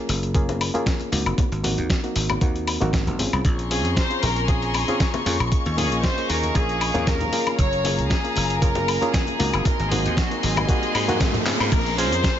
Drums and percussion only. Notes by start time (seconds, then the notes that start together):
0.09 open hi-hat, muted conga
0.23 closed hi-hat
0.35 kick, closed hi-hat
0.49 closed hi-hat, muted conga
0.61 open hi-hat, high woodblock
0.75 closed hi-hat, high conga
0.86 kick, snare, closed hi-hat
1.00 closed hi-hat, muted conga
1.13 open hi-hat, high conga
1.26 closed hi-hat, high woodblock
1.38 kick, closed hi-hat, muted conga
1.52 closed hi-hat
1.64 open hi-hat, low conga
1.78 closed hi-hat
1.90 kick, snare, closed hi-hat, muted conga
2.04 closed hi-hat
2.16 open hi-hat
2.29 muted conga, high conga, high woodblock
2.41 kick, closed hi-hat
2.56 closed hi-hat
2.67 open hi-hat, high woodblock
2.81 closed hi-hat, muted conga, low conga
2.93 kick, snare, closed hi-hat
3.07 closed hi-hat, low conga
3.19 open hi-hat, muted conga, high conga
3.33 closed hi-hat, high woodblock
3.45 kick, closed hi-hat
3.59 closed hi-hat
3.71 open hi-hat
3.85 closed hi-hat, muted conga
3.96 kick, snare, closed hi-hat
4.11 closed hi-hat
4.23 open hi-hat, muted conga
4.36 closed hi-hat
4.48 kick, closed hi-hat
4.62 closed hi-hat
4.74 open hi-hat, muted conga, high woodblock
4.88 closed hi-hat, high conga
5.00 kick, snare, closed hi-hat
5.14 closed hi-hat, muted conga
5.26 open hi-hat, high conga
5.40 closed hi-hat, high woodblock
5.52 kick, closed hi-hat
5.66 closed hi-hat, muted conga
5.78 open hi-hat, low conga
5.92 closed hi-hat
6.04 kick, snare, closed hi-hat, muted conga
6.18 closed hi-hat
6.30 open hi-hat
6.43 closed hi-hat, high conga
6.55 kick, closed hi-hat, muted conga
6.69 closed hi-hat
6.81 open hi-hat, high woodblock
6.95 closed hi-hat, muted conga, low conga
7.07 kick, snare, closed hi-hat
7.20 closed hi-hat, low conga
7.32 open hi-hat, high conga
7.47 closed hi-hat, muted conga, high woodblock
7.59 kick, closed hi-hat
7.73 closed hi-hat
7.85 open hi-hat, muted conga
7.98 closed hi-hat
8.10 kick, snare, closed hi-hat
8.25 closed hi-hat
8.36 open hi-hat, muted conga
8.50 closed hi-hat
8.62 kick, closed hi-hat
8.75 closed hi-hat, muted conga
8.88 open hi-hat, high woodblock
9.02 closed hi-hat, high conga
9.14 kick, snare, closed hi-hat
9.27 closed hi-hat, muted conga
9.40 open hi-hat, high conga
9.54 closed hi-hat, high woodblock
9.65 kick, closed hi-hat, muted conga
9.80 closed hi-hat
9.92 open hi-hat, low conga
10.06 closed hi-hat
10.17 kick, snare, closed hi-hat, muted conga
10.31 closed hi-hat
10.43 open hi-hat
10.57 closed hi-hat, muted conga, high conga, high woodblock
10.69 kick, closed hi-hat
10.83 closed hi-hat
10.95 open hi-hat, high woodblock
11.08 closed hi-hat, muted conga, low conga
11.20 kick, snare, closed hi-hat
11.34 closed hi-hat, low conga
11.46 clap, open hi-hat, muted conga, high conga
11.60 closed hi-hat, high woodblock
11.72 kick, closed hi-hat, crash, shaker
11.86 closed hi-hat
11.98 open hi-hat, shaker
12.12 closed hi-hat, shaker
12.24 kick, snare, closed hi-hat, shaker